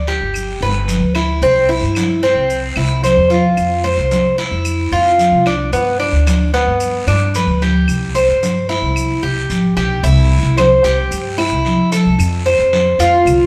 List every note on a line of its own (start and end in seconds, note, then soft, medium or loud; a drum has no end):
0.00 0.18 D2 medium
0.07 0.60 G4 medium
0.07 high conga soft
0.07 short guiro medium
0.07 maracas soft
0.21 0.59 G1 medium
0.34 high conga soft
0.34 long guiro medium
0.34 claves medium
0.34 maracas medium
0.61 0.99 G1 medium
0.61 1.14 B4 medium
0.61 high conga soft
0.88 high conga medium
0.88 short guiro medium
0.88 maracas medium
1.00 1.39 D2 medium
1.15 1.41 E4 medium
1.15 short guiro medium
1.15 claves medium
1.15 maracas soft
1.42 1.80 C2 medium
1.42 1.68 C4 medium
1.42 high conga soft
1.42 long guiro medium
1.42 maracas medium
1.69 2.21 E4 medium
1.69 high conga soft
1.82 2.33 G2 medium
1.95 high conga medium
1.95 short guiro medium
1.95 claves medium
1.95 maracas medium
2.23 2.75 C4 medium
2.23 high conga soft
2.23 short guiro medium
2.23 maracas soft
2.35 2.74 C2 medium
2.50 high conga soft
2.50 long guiro medium
2.50 maracas medium
2.76 3.15 C2 loud
2.76 3.03 E4 medium
2.76 high conga soft
2.76 claves medium
3.04 3.30 C5 medium
3.04 high conga medium
3.04 short guiro medium
3.04 maracas medium
3.17 3.55 E2 medium
3.30 3.82 F4 medium
3.30 high conga medium
3.30 short guiro medium
3.30 maracas soft
3.57 3.96 F2 medium
3.57 high conga soft
3.57 long guiro medium
3.57 claves medium
3.57 maracas medium
3.84 4.36 C5 medium
3.84 high conga soft
3.98 4.49 C2 medium
4.11 high conga loud
4.11 short guiro medium
4.11 maracas medium
4.38 4.90 E4 medium
4.38 short guiro medium
4.38 maracas soft
4.51 4.90 F2 medium
4.65 high conga soft
4.65 long guiro medium
4.65 claves medium
4.65 maracas medium
4.91 5.30 F2 medium
4.91 5.44 F4 medium
4.91 high conga soft
5.18 high conga medium
5.18 short guiro medium
5.18 maracas medium
5.32 5.71 C2 medium
5.46 5.72 D4 medium
5.46 short guiro medium
5.46 claves medium
5.46 maracas soft
5.72 6.11 G2 medium
5.72 5.99 B3 medium
5.72 high conga soft
5.72 long guiro medium
5.72 maracas medium
6.00 6.52 D4 medium
6.00 high conga soft
6.12 6.64 D2 medium
6.27 high conga loud
6.27 short guiro medium
6.27 claves medium
6.27 maracas medium
6.54 7.06 B3 medium
6.54 short guiro medium
6.54 maracas soft
6.67 7.05 G2 medium
6.80 high conga soft
6.80 long guiro medium
6.80 maracas medium
7.07 7.46 G2 medium
7.07 7.34 D4 medium
7.07 high conga soft
7.07 claves medium
7.07 maracas medium
7.35 7.61 B4 medium
7.35 high conga medium
7.35 short guiro medium
7.35 maracas medium
7.47 7.86 D2 medium
7.62 8.14 G4 medium
7.62 high conga medium
7.62 short guiro medium
7.62 maracas soft
7.88 8.27 C2 medium
7.88 high conga soft
7.88 long guiro medium
7.88 claves medium
7.88 maracas medium
8.15 8.67 C5 medium
8.15 high conga soft
8.15 maracas medium
8.28 8.80 G2 medium
8.43 high conga medium
8.43 short guiro medium
8.43 maracas medium
8.69 9.21 E4 medium
8.69 high conga soft
8.69 short guiro medium
8.69 maracas soft
8.82 9.21 C2 medium
8.96 high conga soft
8.96 long guiro medium
8.96 claves medium
8.96 maracas medium
9.23 9.49 C2 medium
9.23 9.75 G4 medium
9.23 high conga soft
9.50 9.74 A1 medium
9.50 high conga medium
9.50 short guiro medium
9.50 maracas medium
9.76 10.01 B1 medium
9.76 10.03 G4 medium
9.76 short guiro medium
9.76 claves medium
9.76 maracas soft
10.03 10.42 C2 loud
10.03 10.56 E4 medium
10.03 high conga soft
10.03 long guiro medium
10.03 maracas medium
10.31 high conga soft
10.31 maracas soft
10.43 10.82 C2 medium
10.57 10.84 C5 medium
10.57 high conga loud
10.57 short guiro medium
10.57 claves medium
10.57 maracas soft
10.84 11.10 C2 medium
10.84 11.37 G4 medium
10.84 high conga soft
10.84 short guiro medium
10.84 maracas medium
11.11 11.49 G2 medium
11.11 high conga soft
11.11 long guiro medium
11.11 maracas loud
11.38 11.90 E4 medium
11.38 high conga soft
11.38 claves medium
11.38 maracas soft
11.51 11.77 C2 medium
11.65 high conga medium
11.65 short guiro medium
11.65 maracas soft
11.92 12.44 A4 medium
11.92 high conga medium
11.92 short guiro medium
11.92 maracas medium
12.05 12.18 C2 medium
12.18 12.57 F2 loud
12.18 high conga soft
12.18 long guiro medium
12.18 claves medium
12.18 maracas medium
12.46 12.98 C5 medium
12.46 high conga soft
12.46 maracas soft
12.59 12.97 F2 medium
12.73 high conga medium
12.73 short guiro medium
12.73 maracas soft
12.99 13.24 F2 medium
12.99 13.46 F4 medium
12.99 high conga soft
12.99 short guiro medium
12.99 maracas medium
13.25 13.46 C2 medium
13.25 high conga soft
13.25 low conga medium
13.25 long guiro medium
13.25 claves medium
13.25 maracas loud